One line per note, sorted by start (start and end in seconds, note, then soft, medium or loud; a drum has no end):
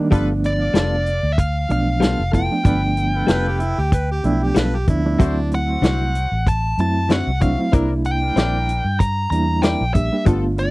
0.09 0.69 G1 medium
0.09 1.07 F3 medium
0.09 0.31 G3 medium
0.09 1.08 A3 medium
0.09 1.08 B3 medium
0.09 0.32 B3 medium
0.09 1.08 D4 loud
0.09 0.25 F4 medium
0.09 0.32 F4 medium
0.09 0.26 A4 medium
0.09 0.32 A4 medium
0.09 0.27 B4 loud
0.09 kick loud
0.09 closed hi-hat medium
0.42 0.51 A4 medium
0.42 0.52 B4 medium
0.42 1.36 D5 medium
0.42 closed hi-hat medium
0.57 1.22 F4 medium
0.57 1.23 A4 medium
0.57 1.23 D5 medium
0.74 1.18 F1 medium
0.74 0.95 G3 medium
0.74 0.95 B3 medium
0.74 0.95 F4 medium
0.74 0.96 A4 medium
0.74 snare loud
0.74 closed hi-hat medium
1.06 closed hi-hat medium
1.23 1.65 D2 medium
1.32 1.39 E5 medium
1.38 1.69 F5 medium
1.38 kick medium
1.38 closed hi-hat medium
1.69 2.14 B1 medium
1.69 2.19 F3 medium
1.69 2.19 A3 medium
1.69 2.20 B3 medium
1.69 2.20 D4 medium
1.69 2.30 F5 medium
1.69 closed hi-hat medium
2.00 2.21 G3 medium
2.00 2.22 B3 medium
2.00 2.22 F4 medium
2.00 2.22 A4 medium
2.00 snare loud
2.00 closed hi-hat medium
2.19 2.47 F1 medium
2.32 2.46 F3 medium
2.32 2.46 A3 medium
2.32 2.46 B3 medium
2.32 2.54 B3 soft
2.32 2.47 E4 medium
2.32 2.54 F4 soft
2.32 2.53 A4 medium
2.32 4.52 G5 loud
2.32 kick medium
2.32 closed hi-hat medium
2.51 2.62 F3 medium
2.51 2.62 A3 medium
2.51 2.62 B3 medium
2.51 2.62 D4 medium
2.63 3.22 G1 medium
2.63 3.61 F3 medium
2.63 3.61 A3 medium
2.63 3.61 B3 medium
2.63 3.62 D4 medium
2.63 2.79 F4 medium
2.63 2.80 A4 medium
2.63 2.81 B4 medium
2.63 kick loud
2.63 closed hi-hat medium
2.94 3.04 A4 medium
2.94 3.05 B4 medium
2.94 closed hi-hat medium
3.11 3.76 F4 medium
3.11 3.77 A4 medium
3.11 3.77 B4 medium
3.27 3.73 F1 medium
3.27 3.48 G3 medium
3.27 3.48 B3 medium
3.27 3.49 F4 loud
3.27 3.49 A4 loud
3.27 3.49 B4 loud
3.27 snare loud
3.27 closed hi-hat medium
3.48 3.62 G4 medium
3.60 3.81 E4 medium
3.60 closed hi-hat medium
3.79 4.19 D2 medium
3.79 3.92 G4 medium
3.92 4.09 B4 medium
3.92 kick medium
3.92 closed hi-hat medium
4.11 4.27 G4 medium
4.24 4.52 B1 medium
4.24 4.73 F3 medium
4.24 4.73 A3 medium
4.24 4.74 B3 medium
4.24 4.74 D4 medium
4.24 4.45 E4 medium
4.24 closed hi-hat medium
4.43 4.59 G4 medium
4.55 4.84 B1 medium
4.55 4.75 G3 medium
4.55 4.76 B3 medium
4.55 4.76 F4 medium
4.55 4.76 A4 medium
4.55 4.77 B4 medium
4.55 snare loud
4.55 closed hi-hat medium
4.75 4.87 G4 medium
4.87 5.16 D2 medium
4.87 5.01 F3 medium
4.87 5.01 A3 medium
4.87 5.01 B3 medium
4.87 5.02 D4 medium
4.87 5.22 E4 medium
4.87 kick medium
4.87 closed hi-hat medium
5.05 5.15 F3 medium
5.05 5.16 A3 medium
5.05 5.16 B3 medium
5.05 5.16 D4 medium
5.17 5.76 D2 medium
5.17 5.39 D3 medium
5.17 6.15 F#3 loud
5.17 6.16 A3 medium
5.17 5.39 C4 medium
5.17 6.16 C4 medium
5.17 5.50 D4 medium
5.17 5.33 E4 medium
5.17 6.16 E4 loud
5.17 5.40 E4 medium
5.17 5.35 F#4 medium
5.17 5.40 F#4 medium
5.17 5.35 C5 medium
5.17 kick loud
5.17 closed hi-hat medium
5.49 5.59 F#4 medium
5.49 5.59 C5 medium
5.49 closed hi-hat medium
5.55 6.51 F#5 medium
5.65 6.30 E4 medium
5.65 6.31 F#4 medium
5.65 6.31 C5 medium
5.82 6.26 C2 medium
5.82 6.02 D3 medium
5.82 6.03 C4 medium
5.82 6.03 E4 medium
5.82 6.03 F#4 medium
5.82 snare loud
5.82 closed hi-hat medium
6.15 closed hi-hat medium
6.32 6.73 A1 medium
6.47 6.79 A5 loud
6.47 kick medium
6.47 closed hi-hat medium
6.78 7.22 F#2 medium
6.78 7.28 F#3 medium
6.78 7.28 A3 medium
6.78 7.28 C4 medium
6.78 7.28 E4 medium
6.78 7.12 A5 loud
6.78 closed hi-hat medium
7.09 7.29 D3 medium
7.09 7.30 C4 medium
7.09 7.30 E4 medium
7.09 7.30 F#4 medium
7.09 7.42 F#5 medium
7.09 snare loud
7.09 closed hi-hat medium
7.27 7.55 C2 medium
7.40 7.54 F#3 medium
7.40 7.55 A3 medium
7.40 7.55 C4 medium
7.40 7.62 C4 soft
7.40 7.56 D4 medium
7.40 7.62 E4 soft
7.40 7.61 F#4 soft
7.40 7.71 F5 medium
7.40 kick medium
7.40 closed hi-hat medium
7.59 7.69 F#3 medium
7.59 7.70 A3 medium
7.59 7.70 C4 medium
7.59 7.70 E4 medium
7.72 8.30 C2 medium
7.72 8.69 G3 medium
7.72 8.70 A#3 medium
7.72 7.92 C4 medium
7.72 7.89 D4 medium
7.72 8.70 D4 medium
7.72 7.93 E4 medium
7.72 7.89 E4 medium
7.72 8.70 E4 medium
7.72 7.93 A#4 medium
7.72 7.90 A#4 medium
7.72 7.93 D5 medium
7.72 kick loud
7.72 closed hi-hat medium
8.03 8.12 E4 medium
8.03 8.13 A#4 medium
8.03 9.03 G5 medium
8.03 closed hi-hat medium
8.20 8.84 D4 medium
8.20 8.85 E4 medium
8.20 8.85 A#4 medium
8.36 8.80 A#1 medium
8.36 8.56 C4 medium
8.36 8.57 E4 medium
8.36 8.57 A#4 medium
8.36 8.57 D5 medium
8.36 snare loud
8.36 closed hi-hat medium
8.69 closed hi-hat medium
8.85 9.26 G2 medium
8.99 9.29 A#5 medium
8.99 kick medium
8.99 closed hi-hat medium
9.30 9.75 E2 medium
9.30 9.81 G3 medium
9.30 9.81 A#3 medium
9.30 9.81 D4 medium
9.30 9.82 E4 medium
9.30 9.63 A#5 medium
9.30 closed hi-hat medium
9.62 9.83 C4 medium
9.62 9.83 E4 medium
9.62 9.83 A#4 medium
9.62 9.84 D5 medium
9.62 9.93 G5 medium
9.62 snare loud
9.62 closed hi-hat medium
9.81 10.09 A#1 medium
9.94 10.07 G3 medium
9.94 10.08 A#3 medium
9.94 10.08 D4 medium
9.94 10.08 G4 medium
9.94 10.24 E5 medium
9.94 kick medium
9.94 closed hi-hat medium
10.12 10.23 G3 medium
10.12 10.23 A#3 medium
10.12 10.23 D4 medium
10.12 10.24 G4 medium
10.24 10.71 G1 medium
10.24 10.46 G3 medium
10.24 10.71 A3 medium
10.24 10.40 B3 medium
10.24 10.46 B3 medium
10.24 10.71 B3 medium
10.24 10.71 D4 medium
10.24 10.42 F4 medium
10.24 10.47 F4 medium
10.24 10.71 F4 medium
10.24 10.42 A4 medium
10.24 10.47 A4 medium
10.24 kick loud
10.24 closed hi-hat medium
10.55 10.65 F4 medium
10.55 10.66 G4 medium
10.55 closed hi-hat medium
10.59 10.71 D5 medium